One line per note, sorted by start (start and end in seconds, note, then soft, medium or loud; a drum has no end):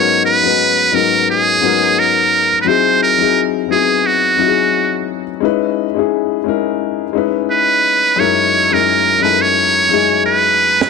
0.00 0.32 G#2 medium
0.00 0.33 F#3 medium
0.00 0.33 B3 medium
0.00 0.33 C#4 medium
0.00 0.34 D#4 medium
0.00 0.34 A#4 medium
0.00 0.25 C#5 medium
0.26 0.96 B4 medium
0.43 0.84 G#2 medium
0.43 0.85 F#3 soft
0.43 0.85 B3 medium
0.43 0.86 C#4 soft
0.43 0.86 D#4 medium
0.48 0.86 B4 medium
0.92 1.50 G#2 medium
0.92 1.50 F#3 medium
0.92 1.51 B3 medium
0.92 1.51 C#4 medium
0.92 1.52 D#4 soft
0.92 1.29 A#4 medium
0.97 1.52 A#4 medium
1.30 2.01 G#4 medium
1.61 2.46 G#2 medium
1.61 2.47 F#3 medium
1.61 2.47 B3 medium
1.61 2.48 C#4 medium
1.61 2.48 D#4 medium
1.66 2.49 A#4 medium
1.99 2.61 A#4 medium
2.61 3.08 F#3 medium
2.61 2.69 B4 medium
2.66 3.08 C4 medium
2.66 3.09 D#4 medium
2.66 3.09 E4 medium
2.66 3.10 G#4 medium
2.66 3.02 C5 medium
3.03 3.42 A#4 medium
3.18 3.60 F#3 medium
3.18 3.60 C4 medium
3.18 3.61 D#4 medium
3.18 3.62 E4 medium
3.23 3.62 G#4 medium
3.68 4.26 F#3 medium
3.68 3.77 B3 soft
3.68 4.27 D#4 medium
3.68 4.28 E4 medium
3.68 4.08 G#4 medium
3.73 4.30 C4 medium
3.73 4.28 G#4 medium
4.06 5.09 F#4 medium
4.37 5.22 F#3 medium
4.37 5.23 C4 medium
4.37 5.23 D#4 medium
4.37 5.24 E4 medium
4.42 4.48 F#4 medium
4.48 5.28 G#4 medium
5.40 5.84 G#3 medium
5.40 5.84 C#4 medium
5.40 5.85 D#4 medium
5.40 5.85 E4 medium
5.45 5.86 B4 loud
5.95 6.36 G#3 medium
5.95 6.36 C#4 medium
5.95 6.37 D#4 medium
5.95 6.38 E4 medium
5.99 6.38 G#4 medium
6.44 7.02 G#3 medium
6.44 7.02 C#4 medium
6.44 7.03 D#4 medium
6.44 7.03 E4 medium
6.49 7.04 A#4 medium
7.13 7.98 G#3 medium
7.13 7.99 C#4 medium
7.13 7.99 D#4 medium
7.13 8.00 E4 medium
7.18 8.00 B4 medium
7.51 8.21 B4 medium
8.16 8.59 F#2 medium
8.16 8.60 G#3 medium
8.16 8.60 C#4 medium
8.16 8.61 D#4 medium
8.16 8.61 E4 medium
8.16 8.75 C#5 medium
8.21 8.62 A#4 medium
8.70 9.12 F#2 medium
8.70 9.12 G#3 medium
8.70 9.13 C#4 medium
8.70 9.13 D#4 medium
8.70 9.14 E4 medium
8.70 9.24 A#4 medium
8.75 9.14 A#4 medium
9.20 9.78 F#2 medium
9.20 9.78 G#3 medium
9.20 9.79 C#4 medium
9.20 9.79 D#4 medium
9.20 9.79 E4 medium
9.20 9.43 B4 medium
9.25 9.30 A4 medium
9.31 9.83 A#4 medium
9.41 10.25 C#5 medium
9.89 10.74 F#2 medium
9.89 10.75 G#3 medium
9.89 10.75 C#4 medium
9.89 10.75 D#4 medium
9.89 10.76 E4 medium
9.94 10.76 G#4 medium
10.26 10.90 B4 medium
10.81 snare medium